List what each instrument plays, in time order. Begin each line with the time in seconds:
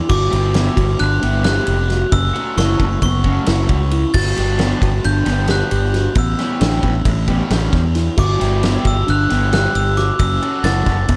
Already playing: tine electric piano E4
0.09 fingered electric bass G1, tine electric piano F#4, glockenspiel D6, kick, crash
0.31 fingered electric bass G1, overdriven electric guitar G3 B3 E4 G4, ride
0.54 overdriven electric guitar G3 B3 E4 G4, tine electric piano B3, snare, ride
0.76 fingered electric bass G1, tine electric piano F#4, kick, ride
0.99 fingered electric bass G1, tine electric piano D4, glockenspiel F#6, ride
1.21 fingered electric bass G1, overdriven electric guitar G3 B3 E4 G4, tine electric piano B3, ride
1.44 overdriven electric guitar G3 B3 E4 G4, tine electric piano G4, glockenspiel F#6, snare, ride
1.67 fingered electric bass F1, tine electric piano G4, ride
1.90 tine electric piano F#4, snare, ride
2.11 fingered electric bass F#1, tine electric piano C#4, glockenspiel E6, kick, ride
2.34 overdriven electric guitar F#3 A3 C#4 F#4, ride
2.56 fingered electric bass F#1, overdriven electric guitar F#3 A3 C#4 F#4, tine electric piano E4, glockenspiel C#6, snare, ride
2.79 fingered electric bass F#1, tine electric piano C#4, kick, ride
3.02 fingered electric bass F#1, tine electric piano B3, glockenspiel C#6, kick, ride
3.24 overdriven electric guitar F#3 A3 C#4 F#4, tine electric piano C#4, kick, ride
3.46 fingered electric bass F#1, overdriven electric guitar F#3 A3 C#4 F#4, tine electric piano E4, snare, ride
3.69 fingered electric bass C#2, tine electric piano C#4, kick, ride
3.91 tine electric piano E4, ride
4.14 fingered electric bass G1, tine electric piano F#4, glockenspiel A6, kick, crash
4.37 fingered electric bass G1, overdriven electric guitar G3 B3 D4 G4, snare, ride
4.59 overdriven electric guitar G3 B3 D4 G4, tine electric piano B3, snare, ride
4.82 fingered electric bass G1, tine electric piano F#4, kick, ride
5.04 fingered electric bass G1, tine electric piano D4, glockenspiel G6, ride
5.26 fingered electric bass G1, overdriven electric guitar G3 B3 D4 G4, tine electric piano B3, snare, ride
5.48 overdriven electric guitar G3 B3 D4 G4, tine electric piano G4, glockenspiel F#6, snare, ride
5.71 fingered electric bass G1, tine electric piano G4, ride
5.93 tine electric piano F#4, snare, ride
6.15 fingered electric bass A1, tine electric piano B3, glockenspiel E6, kick, ride
6.39 overdriven electric guitar E3 G3 C#4 G4, snare, ride
6.61 fingered electric bass A1, overdriven electric guitar E3 G3 C#4 G4, tine electric piano D4, snare, ride
6.83 fingered electric bass A1, tine electric piano B3, kick, ride
7.05 fingered electric bass A1, tine electric piano A3, kick, ride
7.28 overdriven electric guitar E3 G3 C#4 G4, tine electric piano B3, kick, ride
7.50 fingered electric bass A1, overdriven electric guitar E3 G3 C#4 G4, tine electric piano D4, snare, ride
7.73 fingered electric bass E2, tine electric piano B3, kick, snare, ride
7.95 tine electric piano E4, snare, ride
8.17 fingered electric bass G1, tine electric piano F#4, glockenspiel D6, kick, crash
8.40 fingered electric bass G1, overdriven electric guitar G3 B3 E4 G4, snare, ride
8.63 overdriven electric guitar G3 B3 E4 G4, tine electric piano B3, snare, ride
8.84 fingered electric bass G1, tine electric piano F#4, glockenspiel E6, kick, ride
9.07 fingered electric bass G1, tine electric piano D4, glockenspiel F#6, ride
9.30 fingered electric bass G1, overdriven electric guitar G3 B3 E4 G4, tine electric piano B3, snare, ride
9.53 overdriven electric guitar G3 B3 E4 G4, tine electric piano G4, glockenspiel F#6, snare, ride
9.74 fingered electric bass G1, tine electric piano G4, glockenspiel E6, ride
9.97 tine electric piano F#4, glockenspiel D6, snare, ride
10.19 fingered electric bass F#1, tine electric piano C#4, glockenspiel E6, kick, ride
10.42 overdriven electric guitar F#3 C#4 F#4 A4, ride
10.64 fingered electric bass F#1, overdriven electric guitar F#3 C#4 F#4 A4, tine electric piano E4, glockenspiel A6, snare, ride
10.86 fingered electric bass F#1, tine electric piano C#4, kick, snare, ride
11.08 fingered electric bass F#1, tine electric piano B3, kick, ride